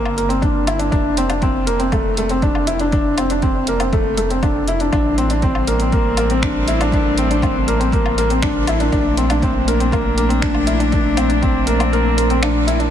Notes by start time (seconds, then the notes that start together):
Already playing: G1 A#3
0.05 low woodblock
0.17 A#3, closed hi-hat
0.29 C4, closed hi-hat
0.42 D4, kick, closed hi-hat
0.67 E4, closed hi-hat, low woodblock
0.79 D4, closed hi-hat
0.92 F1 D4, kick, closed hi-hat
1.17 C4, closed hi-hat
1.30 D4, closed hi-hat, low woodblock
1.42 C4, kick, closed hi-hat
1.66 A#3, closed hi-hat
1.79 C4, closed hi-hat
1.92 A3, kick, closed hi-hat, low woodblock
2.17 A3, closed hi-hat
2.29 C4, closed hi-hat
2.42 D4, kick, closed hi-hat
2.55 low woodblock
2.67 E4, closed hi-hat
2.79 D4, closed hi-hat
2.92 D4, kick, closed hi-hat
3.18 C4, closed hi-hat, low woodblock
3.30 D4, closed hi-hat
3.42 C4, kick, closed hi-hat
3.67 A#3, closed hi-hat
3.80 C4, closed hi-hat, low woodblock
3.93 A3, kick, closed hi-hat
4.17 A3, closed hi-hat
4.30 C4, closed hi-hat
4.43 D4, kick, closed hi-hat, low woodblock
4.68 E4, closed hi-hat
4.80 D4, closed hi-hat
4.92 A1 G3 A3 C4 D4, kick, closed hi-hat, low woodblock
5.18 C4, closed hi-hat
5.30 D4, closed hi-hat
5.42 C4, kick, closed hi-hat
5.55 low woodblock
5.67 A#3, closed hi-hat
5.80 C4, closed hi-hat
5.92 A#3, kick, closed hi-hat
6.17 A#3, closed hi-hat, low woodblock
6.30 C4, closed hi-hat
6.42 D4, finger snap, kick, closed hi-hat
6.68 E4, closed hi-hat
6.81 D4, closed hi-hat, low woodblock
6.92 D4, kick, closed hi-hat
7.18 C4, closed hi-hat
7.30 D4, closed hi-hat
7.42 C4, kick, closed hi-hat, low woodblock
7.68 A#3, closed hi-hat
7.80 C4, closed hi-hat
7.92 A#3, kick, closed hi-hat
8.06 low woodblock
8.18 A#3, closed hi-hat
8.30 C4, closed hi-hat
8.42 D4, finger snap, kick, closed hi-hat
8.67 E4, closed hi-hat, low woodblock
8.80 D4, closed hi-hat
8.92 A#1 A3 A#3 D4, kick, closed hi-hat
9.17 C4, closed hi-hat
9.30 D4, closed hi-hat, low woodblock
9.42 C4, kick, closed hi-hat
9.68 A#3, closed hi-hat
9.80 C4, closed hi-hat
9.92 A#3, kick, closed hi-hat, low woodblock
10.17 A#3, closed hi-hat
10.29 C4, closed hi-hat
10.42 D4, finger snap, kick, closed hi-hat
10.55 low woodblock
10.67 E4, closed hi-hat
10.79 D4, closed hi-hat
10.92 C4 D4, kick, closed hi-hat
11.17 C4, closed hi-hat, low woodblock
11.29 D4, closed hi-hat
11.42 C4, kick, closed hi-hat
11.67 A#3, closed hi-hat
11.79 C4, closed hi-hat, low woodblock
11.93 A#3, closed hi-hat
12.17 A#3, closed hi-hat
12.30 C4, closed hi-hat
12.42 D4, finger snap, closed hi-hat, low woodblock
12.67 E4, closed hi-hat
12.79 D4, closed hi-hat